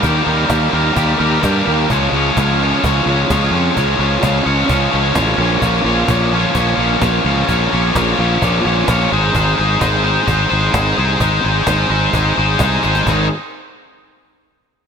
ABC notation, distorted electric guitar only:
X:1
M:4/4
L:1/8
Q:1/4=129
K:Ab
V:1 name="Distorted electric guitar"
[E,G,B,GB] [E,G,B,GB] [E,G,B,GB] [E,G,B,GB] [E,G,B,GB] [E,G,B,GB] [E,G,B,GB] [E,G,B,GB] | [D,F,A,DFd] [D,F,A,DFd] [D,F,A,DFd] [D,F,A,DFd] [D,F,A,DFd] [D,F,A,DFd] [D,F,A,DFd] [D,F,A,DFd] | [D,F,A,DFd] [D,F,A,DFd] [D,F,A,DFd] [D,F,A,DFd] [D,F,A,DFd] [D,F,A,DFd] [D,F,A,DFd] [B,,F,B,DFd] | [B,,F,B,DFd] [B,,F,B,DFd] [B,,F,B,DFd] [B,,F,B,DFd] [B,,F,B,DFd] [B,,F,B,DFd] [B,,F,B,DFd] [B,,F,B,DFd] |
[B,,F,B,DFd] [B,,F,B,DFd] [B,,F,B,DFd] [B,,F,B,DFd] [B,,F,B,DFd] [B,,F,B,DFd] [B,,F,B,DFd] [A,EAc] | [A,EAc] [A,EAc] [A,EAc] [A,EAc] [A,EAc] [A,EAc] [A,EAc] [A,EAc] | [A,EAc] [A,EAc] [A,EAc] [A,EAc] [A,EAc] [A,EAc] [A,EAc] [A,EAc] | [A,,E,A,CEA] z6 z |]